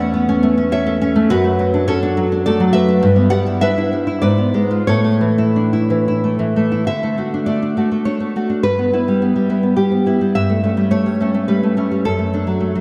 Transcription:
Already playing: E2 A3 A4 D5 F#5
0.00 C#4
0.14 B3
0.29 C#4
0.43 A3
0.58 C#4
0.72 A3 C#5 E5
0.86 A4
1.01 C#4
1.16 A3
1.30 F#2 F#4 B4
1.44 A3
1.59 F#3
1.74 D4
1.87 C#4 A4 C#5
2.03 D4
2.17 F#3
2.32 D4
2.46 A3 A4 D5
2.60 F#3
2.73 A3 B4 E5
2.88 D4
3.03 G2
3.16 B3
3.30 G3 D5 F#5
3.47 E4
3.61 D4 B4 E5
3.78 E4
3.93 G3
4.07 E4
4.22 G#2 B4 D5
4.38 B3
4.54 G#3
4.71 F4
4.87 A2 A4 C#5
5.05 A3
5.21 E3
5.38 E4
5.56 D4
5.73 E4
5.90 E3
6.08 E4
6.24 A3
6.39 E3
6.56 A3
6.72 E4
6.87 D3 E5
7.03 A3
7.18 A3 F#4
7.34 D4
7.46 A3 D5
7.62 D4
7.77 A3 F#4
7.92 A3
8.05 D4 C#5
8.20 A3
8.36 A3 F#4
8.50 D4
8.63 G2 B4
8.79 B3
8.93 B3 E4
9.08 G3
9.22 B3
9.36 G3
9.49 B3 E4
9.63 B3
9.76 G3 G4
9.92 B3
10.06 B3 E4
10.21 G3
10.35 G2 E5
10.50 A3
10.63 A3 C#4
10.77 G3
10.91 A3 C#5
11.06 G3
11.20 A3 C#4
11.34 A3
11.48 G3 B4
11.63 A3
11.77 A3 C#4
11.91 G3
12.05 F#2 A4
12.19 A3
12.33 A3 D4
12.47 F#3
12.60 A3
12.75 F#3

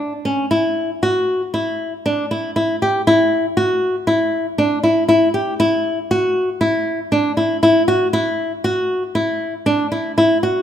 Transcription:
Already playing: D4
0.25 C#4
0.51 E4
1.03 F#4
1.54 E4
2.06 D4
2.31 E4
2.56 E4
2.82 G4
3.07 E4
3.57 F#4
4.07 E4
4.58 D4
4.84 E4
5.09 E4
5.34 G4
5.60 E4
6.11 F#4
6.61 E4
7.12 D4
7.37 E4
7.63 E4
7.88 F#4
8.13 E4
8.64 F#4
9.15 E4
9.66 D4
9.92 E4
10.18 E4
10.43 F#4

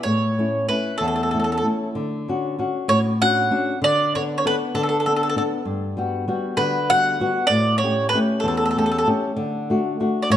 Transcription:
0.03 A2 C#5
0.39 A3 C#4 E4
0.69 A3 C#4 E4 B4
0.98 E2 A4
1.08 A4
1.16 A4
1.23 A4
1.31 A3 C#4 E4 A4
1.40 A4
1.44 A4
1.52 A4
1.58 A4
1.64 A3 C#4 E4
1.95 D3
2.28 C#4 D4 F#4
2.58 C#4 D4 F#4
2.88 A2 C#5
3.22 C#4 D4 F#4 F#5
3.51 C#4 D4 F#4
3.82 D3 D5
4.15 B3 D4 A4 C#5
4.38 C#5
4.45 B3 D4 A4 B4
4.75 D3 A4
4.83 A4
4.89 A4
5.00 A4
5.06 B3 D4 A4
5.16 A4
5.23 A4
5.29 A4
5.36 B3 D4 A4
5.65 G2
5.97 G3 B3 F#4
6.28 G3 B3 F#4
6.57 D3 B4
6.90 G3 B3 F#4 F#5
7.20 G3 B3 F#4
7.47 A2 D5
7.78 C#5
7.83 A3 C#4 G4
8.09 B4
8.14 A3 C#4 G4
8.40 E2 A4
8.48 A4
8.57 A4
8.66 A4
8.71 A4
8.77 A3 C#4 G4 A4
8.86 A4
8.91 A4
8.98 A4
9.07 A3 C#4 G4
9.36 D3
9.70 A3 D4 F#4
10.00 A3 D4 F#4
10.22 D5
10.30 A2 C#5

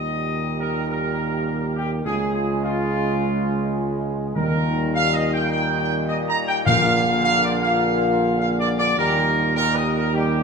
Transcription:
Already playing: D#2 A#2 D#3 G3 G4 D#5
0.60 A#4
0.89 A#4
1.77 G4
2.05 C#2 C#3 G#3 F4 G#4
2.34 G#4
2.63 F4
4.36 D#2 A#2 D#3 G3 D#4 A#4
4.95 F5
5.14 D#5
5.34 G5
5.52 G5
5.80 G5
6.09 D#5
6.29 A#5
6.48 G5
6.65 A#1 A#2 D3 A#3 F4 F5
7.24 F5
7.44 D5
7.63 F5
8.39 F5
8.60 D5
8.78 D5
8.97 D#2 A#2 D#3 G3 G4 A#4
9.55 A#2 D#3 G3 G4 A#4
9.76 D#5
9.96 A#4
10.14 A#2 D#3 G3 G4

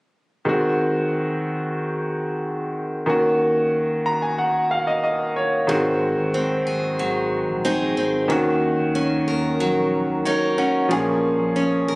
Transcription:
0.45 D#3 G#3 C4 F#4
3.06 D#3 A#3 C#4 F#4
4.06 A#5
4.22 G#5
4.38 F#5
4.71 F5
4.87 D#5
5.04 D#5
5.36 C#5
5.67 G#1 G#2 D#3 G#3 C4 F#4
6.18 G#1
6.34 C4
6.67 F#1 G#4
6.99 G#1 F#3
7.48 A#1
7.65 C4 D#4 G#4
7.97 G#1 C4
8.28 D#2 D#3 A#3 C#4 F#4
8.79 C#2
8.95 C#4
9.27 D#2 A#4
9.60 A#1 F#3
10.09 C#2
10.25 C#4 D#4 A#4 C#5
10.58 C#4 F#5
10.89 A#1 A#2 F3 A#3 C#4 G#4
11.39 A#1
11.56 C#4
11.88 G#1 A#4

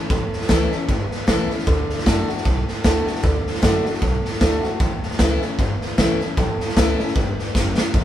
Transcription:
Already playing: C#4
0.10 A1 A2, kick, snare
0.32 muted upright bass stroke, snare
0.41 snare
0.49 C#2 E3 A3 C#4 E4, kick, snare, hi-hat pedal
0.72 C#4 E4, snare
0.89 G1 E2, kick, snare
1.11 muted upright bass stroke, snare
1.27 A1 E3 A3 C#4 E4, kick, snare, hi-hat pedal
1.50 C#4 E4, muted upright bass stroke, snare
1.59 snare
1.67 D2 D3, kick, snare
1.90 muted upright bass stroke, snare
1.98 snare
2.06 F#2 D3 A3 D4 F#4, kick, snare, hi-hat pedal
2.28 D4 F#4, muted upright bass stroke, snare
2.37 snare
2.45 B1 A2, kick, snare
2.67 muted upright bass stroke, snare
2.84 D2 D3 A3 D4 F#4, kick, snare, hi-hat pedal
3.07 D4 F#4, muted upright bass stroke, snare
3.15 snare
3.23 D2 D3, kick, snare
3.45 muted upright bass stroke, snare
3.55 snare
3.62 F#2 D3 A3 D4 F#4, kick, snare, hi-hat pedal
3.85 D4 F#4, muted upright bass stroke, snare
3.94 snare
4.02 B1 A2, kick, snare
4.25 snare
4.33 snare
4.41 D2 D3 A3 D4 F#4, kick, snare, hi-hat pedal
4.63 D4 F#4, snare
4.80 A1 A2, kick, snare
5.03 muted upright bass stroke, snare
5.11 snare
5.19 C#2 E3 A3 C#4 E4, kick, snare, hi-hat pedal
5.42 C#4 E4, snare
5.58 G1 E2, kick, snare
5.81 muted upright bass stroke, snare
5.98 A1 E3 A3 C#4 E4, kick, snare, hi-hat pedal
6.21 C#4 E4, snare
6.37 A1 A2, kick, snare
6.60 muted upright bass stroke, snare
6.69 snare
6.76 C#2 E3 A3 C#4 E4, kick, snare, hi-hat pedal
6.99 C#4 E4, snare
7.08 snare
7.15 G1 G2, kick, snare
7.38 muted upright bass stroke, snare
7.55 F#1 F#2, kick, snare, hi-hat pedal
7.78 muted upright bass stroke, snare
7.94 E1 E2, kick, snare

